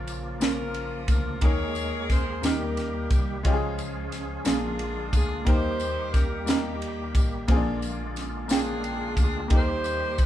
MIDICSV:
0, 0, Header, 1, 6, 480
1, 0, Start_track
1, 0, Tempo, 673401
1, 1015, Time_signature, 6, 3, 24, 8
1, 7313, End_track
2, 0, Start_track
2, 0, Title_t, "Saxophone section"
2, 0, Program_c, 0, 65
2, 319, Note_on_c, 0, 61, 68
2, 320, Note_on_c, 0, 65, 61
2, 331, Note_on_c, 0, 70, 88
2, 765, Note_off_c, 0, 70, 0
2, 795, Note_on_c, 0, 70, 90
2, 999, Note_off_c, 0, 61, 0
2, 999, Note_off_c, 0, 65, 0
2, 1009, Note_off_c, 0, 70, 0
2, 1024, Note_on_c, 0, 70, 79
2, 1030, Note_on_c, 0, 68, 83
2, 1031, Note_on_c, 0, 73, 96
2, 1475, Note_off_c, 0, 73, 0
2, 1503, Note_on_c, 0, 72, 88
2, 1712, Note_off_c, 0, 70, 0
2, 1714, Note_off_c, 0, 68, 0
2, 1739, Note_off_c, 0, 72, 0
2, 1754, Note_on_c, 0, 70, 82
2, 1755, Note_on_c, 0, 63, 56
2, 1756, Note_on_c, 0, 67, 60
2, 2285, Note_off_c, 0, 70, 0
2, 2437, Note_off_c, 0, 63, 0
2, 2438, Note_off_c, 0, 67, 0
2, 3205, Note_on_c, 0, 62, 65
2, 3205, Note_on_c, 0, 65, 70
2, 3205, Note_on_c, 0, 68, 79
2, 3642, Note_off_c, 0, 68, 0
2, 3667, Note_on_c, 0, 68, 99
2, 3882, Note_off_c, 0, 62, 0
2, 3882, Note_off_c, 0, 65, 0
2, 3885, Note_off_c, 0, 68, 0
2, 3898, Note_on_c, 0, 72, 102
2, 3916, Note_on_c, 0, 63, 76
2, 3916, Note_on_c, 0, 67, 74
2, 4363, Note_on_c, 0, 70, 93
2, 4377, Note_off_c, 0, 72, 0
2, 4597, Note_off_c, 0, 63, 0
2, 4598, Note_off_c, 0, 67, 0
2, 4610, Note_off_c, 0, 70, 0
2, 4618, Note_on_c, 0, 67, 75
2, 4635, Note_on_c, 0, 58, 55
2, 4636, Note_on_c, 0, 63, 62
2, 5157, Note_off_c, 0, 67, 0
2, 5317, Note_off_c, 0, 58, 0
2, 5318, Note_off_c, 0, 63, 0
2, 6059, Note_on_c, 0, 65, 62
2, 6062, Note_on_c, 0, 62, 70
2, 6074, Note_on_c, 0, 68, 96
2, 6516, Note_off_c, 0, 68, 0
2, 6559, Note_on_c, 0, 68, 89
2, 6749, Note_off_c, 0, 65, 0
2, 6751, Note_off_c, 0, 62, 0
2, 6772, Note_off_c, 0, 68, 0
2, 6803, Note_on_c, 0, 63, 82
2, 6805, Note_on_c, 0, 72, 110
2, 6809, Note_on_c, 0, 67, 79
2, 7271, Note_off_c, 0, 72, 0
2, 7283, Note_on_c, 0, 70, 88
2, 7313, Note_off_c, 0, 63, 0
2, 7313, Note_off_c, 0, 67, 0
2, 7313, Note_off_c, 0, 70, 0
2, 7313, End_track
3, 0, Start_track
3, 0, Title_t, "Upright piano"
3, 0, Program_c, 1, 0
3, 0, Control_c, 1, 64, 127
3, 0, Note_on_c, 1, 46, 78
3, 0, Note_on_c, 1, 58, 91
3, 0, Note_on_c, 1, 61, 90
3, 0, Note_on_c, 1, 65, 89
3, 0, Note_on_c, 1, 70, 103
3, 131, Note_off_c, 1, 58, 0
3, 135, Note_off_c, 1, 61, 0
3, 139, Note_off_c, 1, 65, 0
3, 143, Note_off_c, 1, 70, 0
3, 266, Note_off_c, 1, 46, 0
3, 286, Note_on_c, 1, 58, 70
3, 294, Note_on_c, 1, 61, 60
3, 301, Note_on_c, 1, 65, 63
3, 306, Note_on_c, 1, 70, 78
3, 854, Note_off_c, 1, 58, 0
3, 857, Note_off_c, 1, 61, 0
3, 861, Note_off_c, 1, 65, 0
3, 863, Note_off_c, 1, 70, 0
3, 1006, Note_on_c, 1, 58, 78
3, 1012, Note_on_c, 1, 63, 66
3, 1015, Note_on_c, 1, 51, 68
3, 1022, Note_on_c, 1, 68, 65
3, 1024, Control_c, 1, 64, 0
3, 1029, Note_on_c, 1, 70, 87
3, 1169, Control_c, 1, 64, 127
3, 1574, Note_off_c, 1, 58, 0
3, 1577, Note_off_c, 1, 63, 0
3, 1582, Note_off_c, 1, 68, 0
3, 1585, Note_off_c, 1, 70, 0
3, 1707, Note_off_c, 1, 51, 0
3, 1724, Note_on_c, 1, 58, 68
3, 1734, Note_on_c, 1, 63, 63
3, 1740, Note_on_c, 1, 51, 59
3, 1740, Note_on_c, 1, 67, 62
3, 1745, Control_c, 1, 64, 0
3, 1751, Note_on_c, 1, 70, 78
3, 1871, Control_c, 1, 64, 127
3, 2293, Note_off_c, 1, 58, 0
3, 2298, Note_off_c, 1, 63, 0
3, 2301, Note_off_c, 1, 67, 0
3, 2307, Note_off_c, 1, 70, 0
3, 2430, Note_off_c, 1, 51, 0
3, 2447, Note_on_c, 1, 56, 91
3, 2457, Note_on_c, 1, 61, 85
3, 2460, Note_on_c, 1, 49, 78
3, 2464, Note_on_c, 1, 65, 84
3, 2465, Control_c, 1, 64, 0
3, 2476, Note_on_c, 1, 67, 85
3, 2512, Note_off_c, 1, 67, 0
3, 2516, Note_on_c, 1, 68, 101
3, 2596, Control_c, 1, 64, 127
3, 3014, Note_off_c, 1, 56, 0
3, 3019, Note_off_c, 1, 61, 0
3, 3023, Note_off_c, 1, 65, 0
3, 3049, Note_off_c, 1, 68, 0
3, 3150, Note_off_c, 1, 49, 0
3, 3168, Note_on_c, 1, 58, 68
3, 3174, Note_on_c, 1, 62, 69
3, 3179, Note_on_c, 1, 46, 64
3, 3186, Control_c, 1, 64, 0
3, 3187, Note_on_c, 1, 65, 63
3, 3192, Note_on_c, 1, 68, 73
3, 3294, Control_c, 1, 64, 127
3, 3735, Note_off_c, 1, 58, 0
3, 3738, Note_off_c, 1, 62, 0
3, 3744, Note_off_c, 1, 65, 0
3, 3747, Note_off_c, 1, 68, 0
3, 3869, Note_off_c, 1, 46, 0
3, 3884, Note_on_c, 1, 58, 84
3, 3891, Note_on_c, 1, 63, 76
3, 3896, Note_on_c, 1, 51, 65
3, 3897, Note_on_c, 1, 67, 65
3, 3905, Control_c, 1, 64, 0
3, 3905, Note_on_c, 1, 70, 92
3, 4028, Control_c, 1, 64, 127
3, 4453, Note_off_c, 1, 58, 0
3, 4456, Note_off_c, 1, 63, 0
3, 4459, Note_off_c, 1, 67, 0
3, 4463, Note_off_c, 1, 70, 0
3, 4588, Note_off_c, 1, 51, 0
3, 4606, Note_on_c, 1, 58, 76
3, 4613, Note_on_c, 1, 63, 60
3, 4625, Note_on_c, 1, 67, 66
3, 4632, Note_on_c, 1, 70, 77
3, 5174, Note_off_c, 1, 58, 0
3, 5177, Note_off_c, 1, 63, 0
3, 5183, Note_off_c, 1, 67, 0
3, 5187, Note_off_c, 1, 70, 0
3, 5330, Note_on_c, 1, 58, 94
3, 5337, Note_on_c, 1, 60, 68
3, 5341, Note_on_c, 1, 46, 78
3, 5344, Control_c, 1, 64, 0
3, 5344, Note_on_c, 1, 65, 83
3, 5357, Note_on_c, 1, 68, 107
3, 5382, Note_off_c, 1, 60, 0
3, 5388, Note_on_c, 1, 62, 94
3, 5467, Control_c, 1, 64, 127
3, 5896, Note_off_c, 1, 58, 0
3, 5903, Note_off_c, 1, 65, 0
3, 5909, Note_off_c, 1, 68, 0
3, 5925, Note_off_c, 1, 62, 0
3, 6030, Note_off_c, 1, 46, 0
3, 6044, Note_on_c, 1, 58, 75
3, 6051, Note_on_c, 1, 61, 49
3, 6061, Note_on_c, 1, 65, 66
3, 6070, Note_on_c, 1, 79, 79
3, 6097, Note_on_c, 1, 62, 62
3, 6099, Note_off_c, 1, 61, 0
3, 6613, Note_off_c, 1, 58, 0
3, 6622, Note_off_c, 1, 65, 0
3, 6626, Note_off_c, 1, 79, 0
3, 6640, Note_off_c, 1, 62, 0
3, 6758, Note_on_c, 1, 58, 80
3, 6770, Note_on_c, 1, 63, 72
3, 6771, Note_on_c, 1, 51, 71
3, 6775, Note_on_c, 1, 67, 71
3, 6784, Note_on_c, 1, 69, 62
3, 6787, Control_c, 1, 64, 0
3, 6826, Note_off_c, 1, 69, 0
3, 6831, Note_on_c, 1, 70, 78
3, 6892, Control_c, 1, 64, 127
3, 7313, Note_off_c, 1, 51, 0
3, 7313, Note_off_c, 1, 58, 0
3, 7313, Note_off_c, 1, 63, 0
3, 7313, Note_off_c, 1, 67, 0
3, 7313, Note_off_c, 1, 70, 0
3, 7313, End_track
4, 0, Start_track
4, 0, Title_t, "Tonewheel organ"
4, 0, Program_c, 2, 16
4, 0, Note_on_c, 2, 49, 70
4, 0, Note_on_c, 2, 53, 60
4, 0, Note_on_c, 2, 58, 63
4, 0, Note_on_c, 2, 65, 66
4, 987, Note_off_c, 2, 65, 0
4, 996, Note_off_c, 2, 49, 0
4, 998, Note_off_c, 2, 53, 0
4, 1004, Note_on_c, 2, 56, 66
4, 1006, Note_on_c, 2, 51, 58
4, 1006, Note_on_c, 2, 68, 74
4, 1723, Note_off_c, 2, 56, 0
4, 1724, Note_off_c, 2, 68, 0
4, 1725, Note_on_c, 2, 67, 76
4, 1727, Note_on_c, 2, 55, 59
4, 2424, Note_off_c, 2, 58, 0
4, 2437, Note_off_c, 2, 51, 0
4, 2443, Note_off_c, 2, 67, 0
4, 2445, Note_off_c, 2, 55, 0
4, 2448, Note_on_c, 2, 68, 72
4, 2450, Note_on_c, 2, 53, 60
4, 2454, Note_on_c, 2, 56, 61
4, 2455, Note_on_c, 2, 61, 58
4, 3165, Note_off_c, 2, 68, 0
4, 3166, Note_off_c, 2, 53, 0
4, 3168, Note_off_c, 2, 61, 0
4, 3185, Note_on_c, 2, 65, 73
4, 3186, Note_on_c, 2, 58, 66
4, 3188, Note_on_c, 2, 50, 65
4, 3881, Note_off_c, 2, 56, 0
4, 3888, Note_on_c, 2, 51, 63
4, 3888, Note_on_c, 2, 55, 58
4, 3889, Note_on_c, 2, 67, 68
4, 3893, Note_off_c, 2, 65, 0
4, 3895, Note_off_c, 2, 50, 0
4, 5317, Note_off_c, 2, 51, 0
4, 5317, Note_off_c, 2, 55, 0
4, 5318, Note_off_c, 2, 67, 0
4, 5331, Note_on_c, 2, 65, 74
4, 5332, Note_on_c, 2, 56, 60
4, 5335, Note_on_c, 2, 50, 67
4, 6759, Note_off_c, 2, 65, 0
4, 6760, Note_off_c, 2, 56, 0
4, 6761, Note_off_c, 2, 50, 0
4, 6773, Note_on_c, 2, 55, 61
4, 6776, Note_on_c, 2, 51, 65
4, 6777, Note_on_c, 2, 67, 75
4, 7313, Note_off_c, 2, 51, 0
4, 7313, Note_off_c, 2, 55, 0
4, 7313, Note_off_c, 2, 58, 0
4, 7313, Note_off_c, 2, 67, 0
4, 7313, End_track
5, 0, Start_track
5, 0, Title_t, "Tine electric piano"
5, 0, Program_c, 3, 4
5, 0, Note_on_c, 3, 34, 98
5, 746, Note_off_c, 3, 34, 0
5, 771, Note_on_c, 3, 38, 99
5, 994, Note_off_c, 3, 38, 0
5, 1011, Note_on_c, 3, 39, 93
5, 1705, Note_off_c, 3, 39, 0
5, 1736, Note_on_c, 3, 39, 91
5, 2214, Note_on_c, 3, 36, 88
5, 2216, Note_off_c, 3, 39, 0
5, 2436, Note_off_c, 3, 36, 0
5, 2458, Note_on_c, 3, 37, 85
5, 3149, Note_off_c, 3, 37, 0
5, 3180, Note_on_c, 3, 34, 102
5, 3630, Note_off_c, 3, 34, 0
5, 3656, Note_on_c, 3, 38, 97
5, 3877, Note_off_c, 3, 38, 0
5, 3896, Note_on_c, 3, 39, 99
5, 5096, Note_off_c, 3, 39, 0
5, 5096, Note_on_c, 3, 33, 90
5, 5317, Note_off_c, 3, 33, 0
5, 5337, Note_on_c, 3, 34, 105
5, 6508, Note_off_c, 3, 34, 0
5, 6533, Note_on_c, 3, 38, 94
5, 6755, Note_off_c, 3, 38, 0
5, 6780, Note_on_c, 3, 39, 88
5, 7313, Note_off_c, 3, 39, 0
5, 7313, End_track
6, 0, Start_track
6, 0, Title_t, "Drums"
6, 53, Note_on_c, 9, 51, 50
6, 53, Note_on_c, 9, 54, 47
6, 124, Note_off_c, 9, 51, 0
6, 125, Note_off_c, 9, 54, 0
6, 292, Note_on_c, 9, 54, 90
6, 295, Note_on_c, 9, 51, 67
6, 301, Note_on_c, 9, 38, 112
6, 363, Note_off_c, 9, 54, 0
6, 366, Note_off_c, 9, 51, 0
6, 372, Note_off_c, 9, 38, 0
6, 530, Note_on_c, 9, 51, 49
6, 602, Note_off_c, 9, 51, 0
6, 769, Note_on_c, 9, 51, 59
6, 770, Note_on_c, 9, 36, 88
6, 772, Note_on_c, 9, 54, 55
6, 840, Note_off_c, 9, 51, 0
6, 842, Note_off_c, 9, 36, 0
6, 843, Note_off_c, 9, 54, 0
6, 1007, Note_on_c, 9, 51, 64
6, 1012, Note_on_c, 9, 36, 95
6, 1079, Note_off_c, 9, 51, 0
6, 1084, Note_off_c, 9, 36, 0
6, 1248, Note_on_c, 9, 54, 52
6, 1255, Note_on_c, 9, 51, 40
6, 1319, Note_off_c, 9, 54, 0
6, 1326, Note_off_c, 9, 51, 0
6, 1495, Note_on_c, 9, 36, 81
6, 1496, Note_on_c, 9, 51, 49
6, 1500, Note_on_c, 9, 54, 45
6, 1502, Note_on_c, 9, 38, 38
6, 1566, Note_off_c, 9, 36, 0
6, 1567, Note_off_c, 9, 51, 0
6, 1571, Note_off_c, 9, 54, 0
6, 1573, Note_off_c, 9, 38, 0
6, 1734, Note_on_c, 9, 54, 86
6, 1737, Note_on_c, 9, 51, 72
6, 1743, Note_on_c, 9, 38, 98
6, 1805, Note_off_c, 9, 54, 0
6, 1808, Note_off_c, 9, 51, 0
6, 1814, Note_off_c, 9, 38, 0
6, 1976, Note_on_c, 9, 51, 53
6, 1984, Note_on_c, 9, 38, 41
6, 2047, Note_off_c, 9, 51, 0
6, 2055, Note_off_c, 9, 38, 0
6, 2213, Note_on_c, 9, 51, 58
6, 2214, Note_on_c, 9, 36, 88
6, 2224, Note_on_c, 9, 54, 55
6, 2284, Note_off_c, 9, 51, 0
6, 2286, Note_off_c, 9, 36, 0
6, 2295, Note_off_c, 9, 54, 0
6, 2457, Note_on_c, 9, 51, 69
6, 2459, Note_on_c, 9, 36, 90
6, 2528, Note_off_c, 9, 51, 0
6, 2530, Note_off_c, 9, 36, 0
6, 2698, Note_on_c, 9, 51, 43
6, 2699, Note_on_c, 9, 54, 52
6, 2769, Note_off_c, 9, 51, 0
6, 2770, Note_off_c, 9, 54, 0
6, 2938, Note_on_c, 9, 51, 52
6, 2942, Note_on_c, 9, 54, 45
6, 2944, Note_on_c, 9, 38, 37
6, 3009, Note_off_c, 9, 51, 0
6, 3014, Note_off_c, 9, 54, 0
6, 3015, Note_off_c, 9, 38, 0
6, 3171, Note_on_c, 9, 54, 78
6, 3175, Note_on_c, 9, 51, 72
6, 3181, Note_on_c, 9, 38, 105
6, 3243, Note_off_c, 9, 54, 0
6, 3246, Note_off_c, 9, 51, 0
6, 3252, Note_off_c, 9, 38, 0
6, 3415, Note_on_c, 9, 51, 57
6, 3486, Note_off_c, 9, 51, 0
6, 3656, Note_on_c, 9, 36, 84
6, 3657, Note_on_c, 9, 54, 60
6, 3658, Note_on_c, 9, 51, 62
6, 3728, Note_off_c, 9, 36, 0
6, 3728, Note_off_c, 9, 54, 0
6, 3729, Note_off_c, 9, 51, 0
6, 3896, Note_on_c, 9, 51, 75
6, 3897, Note_on_c, 9, 36, 99
6, 3967, Note_off_c, 9, 51, 0
6, 3968, Note_off_c, 9, 36, 0
6, 4132, Note_on_c, 9, 54, 50
6, 4138, Note_on_c, 9, 51, 39
6, 4203, Note_off_c, 9, 54, 0
6, 4210, Note_off_c, 9, 51, 0
6, 4375, Note_on_c, 9, 54, 52
6, 4377, Note_on_c, 9, 36, 85
6, 4377, Note_on_c, 9, 51, 51
6, 4383, Note_on_c, 9, 38, 38
6, 4447, Note_off_c, 9, 54, 0
6, 4448, Note_off_c, 9, 36, 0
6, 4448, Note_off_c, 9, 51, 0
6, 4454, Note_off_c, 9, 38, 0
6, 4613, Note_on_c, 9, 54, 93
6, 4618, Note_on_c, 9, 51, 70
6, 4624, Note_on_c, 9, 38, 106
6, 4684, Note_off_c, 9, 54, 0
6, 4690, Note_off_c, 9, 51, 0
6, 4695, Note_off_c, 9, 38, 0
6, 4860, Note_on_c, 9, 51, 56
6, 4931, Note_off_c, 9, 51, 0
6, 5095, Note_on_c, 9, 36, 94
6, 5097, Note_on_c, 9, 51, 60
6, 5097, Note_on_c, 9, 54, 58
6, 5166, Note_off_c, 9, 36, 0
6, 5168, Note_off_c, 9, 51, 0
6, 5169, Note_off_c, 9, 54, 0
6, 5333, Note_on_c, 9, 51, 75
6, 5335, Note_on_c, 9, 36, 101
6, 5404, Note_off_c, 9, 51, 0
6, 5406, Note_off_c, 9, 36, 0
6, 5576, Note_on_c, 9, 54, 50
6, 5580, Note_on_c, 9, 51, 40
6, 5647, Note_off_c, 9, 54, 0
6, 5651, Note_off_c, 9, 51, 0
6, 5818, Note_on_c, 9, 54, 45
6, 5822, Note_on_c, 9, 51, 52
6, 5828, Note_on_c, 9, 38, 35
6, 5889, Note_off_c, 9, 54, 0
6, 5894, Note_off_c, 9, 51, 0
6, 5900, Note_off_c, 9, 38, 0
6, 6052, Note_on_c, 9, 54, 99
6, 6061, Note_on_c, 9, 51, 70
6, 6067, Note_on_c, 9, 38, 115
6, 6123, Note_off_c, 9, 54, 0
6, 6133, Note_off_c, 9, 51, 0
6, 6138, Note_off_c, 9, 38, 0
6, 6300, Note_on_c, 9, 51, 53
6, 6371, Note_off_c, 9, 51, 0
6, 6535, Note_on_c, 9, 36, 91
6, 6538, Note_on_c, 9, 51, 61
6, 6544, Note_on_c, 9, 54, 57
6, 6606, Note_off_c, 9, 36, 0
6, 6609, Note_off_c, 9, 51, 0
6, 6615, Note_off_c, 9, 54, 0
6, 6773, Note_on_c, 9, 51, 67
6, 6777, Note_on_c, 9, 36, 107
6, 6844, Note_off_c, 9, 51, 0
6, 6848, Note_off_c, 9, 36, 0
6, 7014, Note_on_c, 9, 54, 53
6, 7024, Note_on_c, 9, 51, 40
6, 7086, Note_off_c, 9, 54, 0
6, 7096, Note_off_c, 9, 51, 0
6, 7257, Note_on_c, 9, 54, 51
6, 7260, Note_on_c, 9, 36, 85
6, 7263, Note_on_c, 9, 51, 52
6, 7313, Note_off_c, 9, 36, 0
6, 7313, Note_off_c, 9, 51, 0
6, 7313, Note_off_c, 9, 54, 0
6, 7313, End_track
0, 0, End_of_file